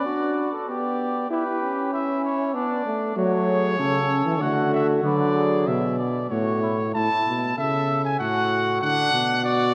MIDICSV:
0, 0, Header, 1, 5, 480
1, 0, Start_track
1, 0, Key_signature, 2, "minor"
1, 0, Tempo, 621118
1, 1010, Time_signature, 3, 2, 24, 8
1, 3405, Tempo, 628272
1, 7481, End_track
2, 0, Start_track
2, 0, Title_t, "Trumpet"
2, 0, Program_c, 0, 56
2, 0, Note_on_c, 0, 74, 89
2, 501, Note_off_c, 0, 74, 0
2, 533, Note_on_c, 0, 74, 74
2, 1002, Note_off_c, 0, 74, 0
2, 1012, Note_on_c, 0, 71, 84
2, 1481, Note_off_c, 0, 71, 0
2, 1494, Note_on_c, 0, 76, 79
2, 1728, Note_off_c, 0, 76, 0
2, 1736, Note_on_c, 0, 73, 76
2, 1967, Note_on_c, 0, 74, 81
2, 1978, Note_off_c, 0, 73, 0
2, 2444, Note_off_c, 0, 74, 0
2, 2454, Note_on_c, 0, 73, 104
2, 3411, Note_on_c, 0, 78, 82
2, 3422, Note_off_c, 0, 73, 0
2, 3649, Note_off_c, 0, 78, 0
2, 3658, Note_on_c, 0, 76, 83
2, 3764, Note_off_c, 0, 76, 0
2, 3892, Note_on_c, 0, 74, 89
2, 4373, Note_on_c, 0, 76, 83
2, 4384, Note_off_c, 0, 74, 0
2, 4608, Note_off_c, 0, 76, 0
2, 4612, Note_on_c, 0, 74, 72
2, 4848, Note_off_c, 0, 74, 0
2, 4851, Note_on_c, 0, 73, 78
2, 5328, Note_off_c, 0, 73, 0
2, 5341, Note_on_c, 0, 81, 112
2, 5794, Note_off_c, 0, 81, 0
2, 5830, Note_on_c, 0, 76, 106
2, 6178, Note_off_c, 0, 76, 0
2, 6186, Note_on_c, 0, 80, 93
2, 6292, Note_off_c, 0, 80, 0
2, 6296, Note_on_c, 0, 78, 109
2, 6763, Note_off_c, 0, 78, 0
2, 6772, Note_on_c, 0, 78, 125
2, 7236, Note_off_c, 0, 78, 0
2, 7252, Note_on_c, 0, 74, 118
2, 7481, Note_off_c, 0, 74, 0
2, 7481, End_track
3, 0, Start_track
3, 0, Title_t, "Flugelhorn"
3, 0, Program_c, 1, 56
3, 40, Note_on_c, 1, 66, 87
3, 394, Note_off_c, 1, 66, 0
3, 399, Note_on_c, 1, 69, 77
3, 530, Note_on_c, 1, 67, 96
3, 541, Note_off_c, 1, 69, 0
3, 1002, Note_off_c, 1, 67, 0
3, 1007, Note_on_c, 1, 67, 93
3, 1478, Note_off_c, 1, 67, 0
3, 1484, Note_on_c, 1, 64, 91
3, 1958, Note_off_c, 1, 64, 0
3, 1963, Note_on_c, 1, 62, 97
3, 2433, Note_off_c, 1, 62, 0
3, 2444, Note_on_c, 1, 66, 75
3, 2552, Note_off_c, 1, 66, 0
3, 2684, Note_on_c, 1, 68, 70
3, 2919, Note_off_c, 1, 68, 0
3, 2927, Note_on_c, 1, 69, 85
3, 3407, Note_on_c, 1, 66, 93
3, 3418, Note_off_c, 1, 69, 0
3, 3888, Note_off_c, 1, 66, 0
3, 3893, Note_on_c, 1, 71, 78
3, 4121, Note_off_c, 1, 71, 0
3, 4125, Note_on_c, 1, 68, 72
3, 4624, Note_off_c, 1, 68, 0
3, 4850, Note_on_c, 1, 66, 75
3, 5077, Note_off_c, 1, 66, 0
3, 5094, Note_on_c, 1, 64, 74
3, 5204, Note_off_c, 1, 64, 0
3, 5338, Note_on_c, 1, 64, 80
3, 5792, Note_off_c, 1, 64, 0
3, 5821, Note_on_c, 1, 69, 84
3, 6289, Note_off_c, 1, 69, 0
3, 6297, Note_on_c, 1, 66, 89
3, 6763, Note_off_c, 1, 66, 0
3, 6778, Note_on_c, 1, 62, 81
3, 7239, Note_off_c, 1, 62, 0
3, 7249, Note_on_c, 1, 66, 92
3, 7481, Note_off_c, 1, 66, 0
3, 7481, End_track
4, 0, Start_track
4, 0, Title_t, "Trombone"
4, 0, Program_c, 2, 57
4, 43, Note_on_c, 2, 62, 68
4, 396, Note_off_c, 2, 62, 0
4, 527, Note_on_c, 2, 59, 72
4, 999, Note_off_c, 2, 59, 0
4, 1005, Note_on_c, 2, 64, 82
4, 1114, Note_off_c, 2, 64, 0
4, 1248, Note_on_c, 2, 61, 81
4, 1966, Note_on_c, 2, 59, 79
4, 1977, Note_off_c, 2, 61, 0
4, 2204, Note_off_c, 2, 59, 0
4, 2208, Note_on_c, 2, 57, 78
4, 2437, Note_off_c, 2, 57, 0
4, 2442, Note_on_c, 2, 57, 85
4, 2912, Note_off_c, 2, 57, 0
4, 2928, Note_on_c, 2, 61, 75
4, 3398, Note_off_c, 2, 61, 0
4, 3405, Note_on_c, 2, 57, 87
4, 3877, Note_off_c, 2, 57, 0
4, 3888, Note_on_c, 2, 54, 85
4, 4620, Note_off_c, 2, 54, 0
4, 4851, Note_on_c, 2, 57, 75
4, 5307, Note_off_c, 2, 57, 0
4, 7481, End_track
5, 0, Start_track
5, 0, Title_t, "Bass trombone"
5, 0, Program_c, 3, 57
5, 2451, Note_on_c, 3, 54, 100
5, 2895, Note_off_c, 3, 54, 0
5, 2931, Note_on_c, 3, 49, 91
5, 3280, Note_off_c, 3, 49, 0
5, 3284, Note_on_c, 3, 52, 96
5, 3402, Note_on_c, 3, 50, 99
5, 3414, Note_off_c, 3, 52, 0
5, 3883, Note_off_c, 3, 50, 0
5, 3888, Note_on_c, 3, 50, 103
5, 4376, Note_on_c, 3, 47, 90
5, 4388, Note_off_c, 3, 50, 0
5, 4854, Note_off_c, 3, 47, 0
5, 4861, Note_on_c, 3, 45, 83
5, 5334, Note_off_c, 3, 45, 0
5, 5350, Note_on_c, 3, 45, 72
5, 5457, Note_off_c, 3, 45, 0
5, 5590, Note_on_c, 3, 47, 76
5, 5823, Note_off_c, 3, 47, 0
5, 5828, Note_on_c, 3, 49, 74
5, 6293, Note_off_c, 3, 49, 0
5, 6303, Note_on_c, 3, 45, 81
5, 6766, Note_off_c, 3, 45, 0
5, 6780, Note_on_c, 3, 50, 86
5, 7007, Note_off_c, 3, 50, 0
5, 7011, Note_on_c, 3, 47, 89
5, 7481, Note_off_c, 3, 47, 0
5, 7481, End_track
0, 0, End_of_file